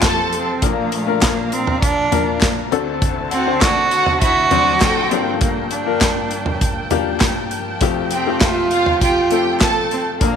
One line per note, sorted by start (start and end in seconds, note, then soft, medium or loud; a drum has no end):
0.00 0.58 F1 medium
0.00 0.58 F2 medium
0.00 0.60 F2 medium
0.00 2.68 F3 medium
0.00 0.64 C4 medium
0.00 0.63 F4 medium
0.00 0.60 G4 medium
0.00 0.64 G4 medium
0.00 0.60 A4 medium
0.00 0.64 A4 medium
0.00 0.44 A4 loud
0.00 0.38 C5 medium
0.00 0.60 C5 medium
0.00 0.44 A5 loud
0.00 kick loud
0.00 snare medium
0.00 clap medium
0.00 closed hi-hat medium
0.03 clap medium
0.33 0.65 C4 medium
0.33 closed hi-hat medium
0.62 2.68 A#1 medium
0.62 2.70 A#2 medium
0.62 2.68 A#2 medium
0.62 0.95 A#3 medium
0.62 2.70 D4 medium
0.62 0.95 D4 medium
0.62 0.95 F4 medium
0.62 0.95 A#4 medium
0.62 2.70 F5 medium
0.62 2.70 A#5 medium
0.62 kick loud
0.62 closed hi-hat loud
0.92 1.25 A3 medium
0.92 closed hi-hat medium
1.06 1.83 A#3 medium
1.06 1.83 D4 medium
1.06 1.83 F4 medium
1.06 1.83 A#4 medium
1.21 kick loud
1.21 snare loud
1.21 clap medium
1.21 closed hi-hat medium
1.23 1.54 A#3 medium
1.23 clap medium
1.52 1.82 C4 medium
1.52 closed hi-hat medium
1.67 floor tom medium
1.82 2.39 D4 loud
1.82 kick loud
1.82 closed hi-hat medium
2.12 2.72 A#3 medium
2.12 2.70 D4 medium
2.12 2.72 F4 medium
2.12 2.72 A#4 medium
2.12 closed hi-hat medium
2.12 floor tom medium
2.41 kick loud
2.41 snare loud
2.41 clap medium
2.41 closed hi-hat medium
2.43 clap medium
2.71 5.09 D2 medium
2.71 5.08 D2 medium
2.71 5.09 D3 medium
2.71 5.08 D3 medium
2.71 3.31 C4 medium
2.71 3.32 D4 medium
2.71 5.09 E4 medium
2.71 3.32 F#4 medium
2.71 3.32 A4 loud
2.71 5.09 C5 medium
2.71 5.09 A5 medium
2.71 closed hi-hat medium
3.02 kick loud
3.02 closed hi-hat medium
3.31 3.64 C4 loud
3.31 3.56 F#4 medium
3.31 3.56 F#5 medium
3.31 closed hi-hat medium
3.46 4.22 C4 medium
3.46 4.22 D4 medium
3.46 4.23 F#4 medium
3.46 4.23 C5 medium
3.61 3.86 D4 medium
3.61 4.21 F#4 loud
3.61 3.86 D5 medium
3.61 kick loud
3.61 snare loud
3.61 clap medium
3.61 closed hi-hat medium
3.91 4.15 F#4 loud
3.91 4.15 F#5 loud
3.91 closed hi-hat medium
4.06 floor tom medium
4.21 4.46 E4 medium
4.21 5.12 F#4 loud
4.21 4.46 E5 loud
4.21 kick loud
4.21 closed hi-hat medium
4.51 5.12 F#3 medium
4.51 5.11 C4 medium
4.51 4.75 D4 medium
4.51 5.10 D4 medium
4.51 5.12 C5 medium
4.51 4.75 D5 loud
4.51 closed hi-hat medium
4.51 floor tom medium
4.80 5.24 A4 loud
4.80 5.24 G5 loud
4.80 kick loud
4.80 snare medium
4.80 clap medium
4.80 closed hi-hat medium
4.82 clap medium
5.11 7.48 G1 medium
5.11 7.79 G2 medium
5.11 7.48 G2 medium
5.11 10.36 F3 medium
5.11 5.71 A#3 medium
5.11 7.79 A#3 medium
5.11 5.40 C4 medium
5.11 5.72 D4 medium
5.11 5.72 F4 medium
5.11 5.72 G4 medium
5.11 10.17 G5 medium
5.11 10.17 A5 medium
5.11 closed hi-hat medium
5.41 5.69 A#3 medium
5.41 kick loud
5.41 closed hi-hat medium
5.71 6.58 D4 medium
5.71 closed hi-hat medium
5.86 6.62 A#3 medium
5.86 6.62 D4 medium
5.86 6.62 F4 medium
5.86 6.63 A#4 medium
6.01 kick loud
6.01 snare loud
6.01 clap medium
6.01 closed hi-hat medium
6.31 closed hi-hat medium
6.46 floor tom medium
6.61 kick loud
6.61 closed hi-hat medium
6.91 7.56 A#3 medium
6.91 7.56 D4 medium
6.91 7.57 F4 medium
6.91 7.57 G4 medium
6.91 closed hi-hat medium
6.91 floor tom medium
7.20 kick loud
7.20 snare medium
7.20 clap medium
7.20 closed hi-hat medium
7.51 closed hi-hat medium
7.81 10.17 F1 medium
7.81 10.19 F2 medium
7.81 10.17 F2 medium
7.81 8.14 A3 medium
7.81 10.19 C4 medium
7.81 8.14 C4 medium
7.81 8.14 F4 medium
7.81 8.14 G4 medium
7.81 kick loud
7.81 closed hi-hat medium
8.11 8.44 C4 medium
8.11 8.35 G4 medium
8.11 8.35 G5 medium
8.11 closed hi-hat medium
8.26 9.02 A3 medium
8.26 9.02 C4 medium
8.26 9.03 F4 medium
8.26 9.03 G4 medium
8.40 8.65 F4 medium
8.40 9.02 F4 loud
8.40 8.65 E5 medium
8.40 kick loud
8.40 snare loud
8.40 clap medium
8.40 closed hi-hat medium
8.71 8.95 F4 loud
8.71 8.95 F5 loud
8.71 closed hi-hat medium
8.86 floor tom medium
9.01 9.58 F4 medium
9.01 9.25 G4 medium
9.01 9.25 G5 loud
9.01 kick loud
9.01 closed hi-hat medium
9.31 9.96 A3 medium
9.31 9.97 C4 medium
9.31 9.97 F4 medium
9.31 9.55 G4 medium
9.31 9.97 A4 medium
9.31 9.55 G5 loud
9.31 closed hi-hat medium
9.60 10.04 A4 loud
9.60 kick loud
9.60 snare medium
9.60 clap medium
9.60 closed hi-hat medium
9.61 10.04 A5 loud
9.61 clap medium
9.91 10.06 C4 medium
9.91 closed hi-hat medium
10.20 10.36 A#1 medium
10.20 10.36 A#2 medium
10.20 10.36 A#3 medium
10.20 10.36 D4 medium
10.20 10.36 F4 medium
10.20 10.36 A#4 medium
10.20 10.36 F5 medium
10.20 10.36 A#5 medium
10.20 kick loud
10.20 closed hi-hat medium